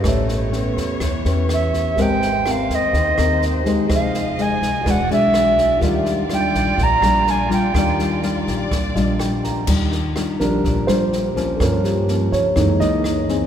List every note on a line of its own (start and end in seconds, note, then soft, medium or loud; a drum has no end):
0.00 0.49 C#4 medium
0.00 0.49 G4 medium
0.00 1.91 G4 medium
0.00 0.50 B4 medium
0.00 1.93 B4 medium
0.00 cross-stick medium
0.00 snare soft
0.04 0.73 A1 loud
0.04 0.98 A3 medium
0.04 1.95 B3 medium
0.04 1.95 C#5 medium
0.04 1.94 C#5 soft
0.04 1.95 E5 medium
0.04 kick medium
0.29 snare soft
0.52 1.00 C#4 soft
0.52 1.00 G4 soft
0.52 1.01 B4 medium
0.52 snare soft
0.77 0.99 E2 medium
0.77 kick soft
0.77 snare soft
1.00 1.23 E2 medium
1.00 1.95 E3 medium
1.00 kick medium
1.00 cross-stick medium
1.00 snare soft
1.25 1.93 E2 medium
1.25 1.93 C#4 medium
1.25 1.93 G4 medium
1.25 1.93 B4 medium
1.25 snare soft
1.49 cross-stick medium
1.49 snare soft
1.53 2.03 E5 medium
1.73 kick soft
1.73 snare soft
1.95 2.65 G#1 medium
1.95 2.91 G#3 medium
1.95 3.88 A#3 medium
1.95 2.29 C4 medium
1.95 3.61 G4 soft
1.95 2.29 G4 medium
1.95 3.62 A#4 soft
1.95 2.29 A#4 medium
1.95 3.88 C5 medium
1.95 3.63 C5 soft
1.95 kick medium
1.95 snare soft
2.01 3.64 D#5 soft
2.01 2.52 G5 loud
2.22 snare soft
2.46 2.93 C4 soft
2.46 2.94 G4 soft
2.46 2.94 A#4 medium
2.46 cross-stick medium
2.46 snare soft
2.51 2.76 F5 medium
2.69 2.92 D#2 medium
2.69 kick soft
2.69 snare soft
2.74 3.44 D#5 loud
2.93 3.16 D#2 medium
2.93 3.88 D#3 medium
2.93 kick medium
2.93 snare soft
3.18 3.86 D#2 medium
3.18 3.62 C4 medium
3.18 3.62 G4 medium
3.18 3.62 A#4 medium
3.18 cross-stick medium
3.18 snare soft
3.42 snare soft
3.64 4.34 G#3 medium
3.64 4.34 D#4 medium
3.64 3.89 G4 soft
3.64 4.34 G4 medium
3.64 3.89 A#4 soft
3.64 3.89 C5 soft
3.64 3.90 D#5 soft
3.64 kick soft
3.64 snare soft
3.86 4.58 F1 medium
3.86 4.83 F3 medium
3.86 5.80 G#3 medium
3.86 4.82 G#4 soft
3.86 4.84 C5 soft
3.86 4.85 D#5 medium
3.86 kick medium
3.86 cross-stick medium
3.86 snare soft
3.93 4.85 D#5 soft
3.93 4.43 F5 medium
4.14 snare soft
4.38 4.70 G#3 soft
4.38 4.70 D#4 soft
4.38 4.92 G#5 medium
4.38 snare soft
4.62 4.84 C2 medium
4.62 kick soft
4.62 snare soft
4.81 5.78 F#4 soft
4.81 5.79 G#4 soft
4.85 5.08 E1 medium
4.85 5.80 E3 soft
4.85 5.00 G#3 soft
4.85 5.00 D4 medium
4.85 5.81 F#4 medium
4.85 5.00 F#4 medium
4.85 5.80 B4 soft
4.85 5.80 D5 medium
4.85 5.81 D5 medium
4.85 kick medium
4.85 cross-stick medium
4.85 snare soft
4.90 5.11 F#5 medium
5.09 5.78 B1 medium
5.09 5.78 G#3 medium
5.09 5.79 D4 medium
5.09 5.79 F#4 medium
5.09 5.79 E5 loud
5.09 snare soft
5.34 cross-stick medium
5.34 snare soft
5.58 kick soft
5.58 snare soft
5.78 6.50 D#2 loud
5.78 9.63 G3 medium
5.78 7.69 F4 medium
5.78 9.63 F4 medium
5.78 7.70 G4 medium
5.78 7.72 D5 medium
5.78 kick medium
5.78 snare soft
5.82 6.76 D#3 medium
5.82 6.26 G3 medium
5.82 6.27 D4 medium
5.82 6.27 F4 medium
5.82 7.71 A#4 medium
5.82 7.72 D5 medium
6.05 snare soft
6.30 6.78 G3 soft
6.30 6.78 D4 soft
6.30 6.79 F4 soft
6.30 cross-stick medium
6.30 snare soft
6.34 6.84 G5 medium
6.54 6.77 A#1 medium
6.54 kick soft
6.54 snare soft
6.78 7.01 A#1 medium
6.78 7.73 A#2 medium
6.78 kick medium
6.78 snare soft
6.83 7.31 A#5 loud
7.02 7.70 A#1 medium
7.02 7.47 G3 medium
7.02 7.47 D4 medium
7.02 7.47 F4 medium
7.02 cross-stick medium
7.02 snare soft
7.27 7.52 G#5 medium
7.27 snare soft
7.50 7.71 G3 medium
7.50 7.71 D4 medium
7.50 7.71 F4 medium
7.50 8.20 G5 medium
7.50 kick soft
7.50 snare soft
7.72 8.43 D#2 loud
7.72 8.69 D#3 medium
7.72 8.19 G3 medium
7.72 8.19 D4 medium
7.72 9.62 F4 soft
7.72 8.19 F4 medium
7.72 9.63 G4 soft
7.72 9.64 A#4 soft
7.72 9.65 D5 medium
7.72 kick medium
7.72 cross-stick medium
7.72 snare soft
7.78 9.65 D5 medium
7.99 snare soft
8.23 8.71 G3 soft
8.23 8.71 D4 soft
8.23 8.71 F4 medium
8.23 snare soft
8.47 8.70 A#1 medium
8.47 kick soft
8.47 snare soft
8.71 8.94 A#1 medium
8.71 9.65 A#2 medium
8.71 kick medium
8.71 cross-stick medium
8.71 snare soft
8.95 9.64 A#1 medium
8.95 9.64 G3 medium
8.95 9.64 D4 medium
8.95 9.64 F4 medium
8.95 9.17 D#5 soft
8.95 snare soft
9.20 9.42 G5 medium
9.20 cross-stick medium
9.20 snare soft
9.44 9.66 A#5 soft
9.44 kick soft
9.44 snare soft
9.67 10.36 D#2 loud
9.67 10.61 D#3 medium
9.67 9.98 G3 medium
9.67 9.99 D4 medium
9.67 9.99 F4 medium
9.67 kick medium
9.67 snare soft
9.67 crash medium
9.92 snare soft
10.16 10.84 G3 soft
10.16 10.84 D4 soft
10.16 10.84 F4 medium
10.16 cross-stick medium
10.16 snare soft
10.40 10.62 A#1 medium
10.40 11.08 F3 soft
10.40 11.09 G3 soft
10.40 11.09 D4 soft
10.40 10.85 A#4 medium
10.40 kick soft
10.40 snare soft
10.64 10.87 A#1 medium
10.64 11.58 A#2 medium
10.64 kick medium
10.64 snare soft
10.87 11.56 A#1 medium
10.87 11.32 G3 medium
10.87 11.32 D4 medium
10.87 11.33 F4 medium
10.87 11.56 C5 medium
10.87 cross-stick medium
10.87 snare soft
11.12 snare soft
11.36 12.04 F3 medium
11.36 12.05 A#3 medium
11.36 12.05 C#4 medium
11.36 kick soft
11.36 snare soft
11.57 12.28 G2 loud
11.57 11.92 F3 soft
11.57 11.92 A#3 soft
11.57 11.60 A4 soft
11.57 kick medium
11.57 cross-stick medium
11.57 snare soft
11.61 12.54 G2 medium
11.61 11.93 C#4 soft
11.61 11.84 A#4 medium
11.84 12.29 G4 soft
11.84 snare soft
12.08 12.55 F3 soft
12.08 12.55 A#3 soft
12.08 12.55 C#4 soft
12.08 snare soft
12.32 12.55 C#3 medium
12.32 12.77 C#5 medium
12.32 kick soft
12.32 snare soft
12.56 12.79 F#2 medium
12.56 13.47 F#2 medium
12.56 13.47 E3 soft
12.56 12.71 E3 medium
12.56 13.47 G#3 soft
12.56 13.47 A#3 soft
12.56 12.71 A#3 medium
12.56 13.47 D#4 soft
12.56 12.71 D#4 medium
12.56 kick medium
12.56 cross-stick medium
12.56 snare soft
12.80 13.47 C#2 medium
12.80 13.25 E3 medium
12.80 13.25 A#3 medium
12.80 13.26 D#4 medium
12.80 13.47 D#5 medium
12.80 snare soft
13.04 cross-stick medium
13.04 snare soft
13.29 13.47 C4 medium
13.29 13.47 D#4 medium
13.29 13.47 G#4 medium
13.29 kick soft
13.29 snare soft